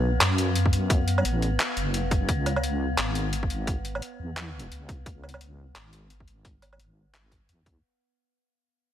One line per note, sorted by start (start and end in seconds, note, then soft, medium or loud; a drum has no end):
0.00 0.19 B1 medium
0.00 7.84 B3 medium
0.21 1.23 F#2 loud
0.21 clap loud
0.21 closed hi-hat medium
0.38 closed hi-hat medium
0.56 closed hi-hat medium
0.66 kick medium
0.73 closed hi-hat medium
0.90 kick loud
0.90 closed hi-hat medium
1.08 closed hi-hat medium
1.18 low woodblock soft
1.25 1.58 A1 medium
1.25 closed hi-hat medium
1.42 closed hi-hat soft
1.60 clap loud
1.60 closed hi-hat medium
1.77 2.28 F#1 loud
1.77 closed hi-hat medium
1.94 closed hi-hat medium
2.11 kick loud
2.11 closed hi-hat medium
2.29 2.97 C#2 loud
2.29 kick loud
2.29 closed hi-hat medium
2.46 closed hi-hat medium
2.46 low woodblock soft
2.56 low woodblock soft
2.64 closed hi-hat medium
2.98 4.01 G#1 loud
2.98 clap loud
2.98 closed hi-hat medium
3.15 closed hi-hat medium
3.33 closed hi-hat medium
3.43 kick medium
3.50 closed hi-hat medium
3.67 kick loud
3.67 closed hi-hat medium
3.85 closed hi-hat medium
3.95 low woodblock medium
4.02 closed hi-hat medium
4.19 4.70 E2 loud
4.37 clap loud
4.37 closed hi-hat medium
4.59 closed hi-hat medium
4.71 5.05 C#2 medium
4.71 closed hi-hat medium
4.89 kick loud
4.89 closed hi-hat medium
5.06 5.74 C#2 loud
5.06 kick loud
5.06 closed hi-hat medium
5.24 low woodblock soft
5.29 closed hi-hat medium
5.34 low woodblock medium
5.41 closed hi-hat medium
5.75 6.78 G#1 medium
5.75 clap loud
5.75 closed hi-hat medium
5.93 closed hi-hat medium
6.10 closed hi-hat medium
6.20 kick medium
6.28 closed hi-hat medium
6.45 kick loud
6.45 closed hi-hat medium
6.62 closed hi-hat medium
6.62 low woodblock soft
6.73 low woodblock medium
6.80 7.48 G#1 loud
6.80 closed hi-hat medium
7.14 clap loud
7.14 closed hi-hat medium
7.31 kick medium
7.31 closed hi-hat medium
7.49 7.82 E2 medium
7.49 closed hi-hat medium
7.66 kick medium
7.66 closed hi-hat medium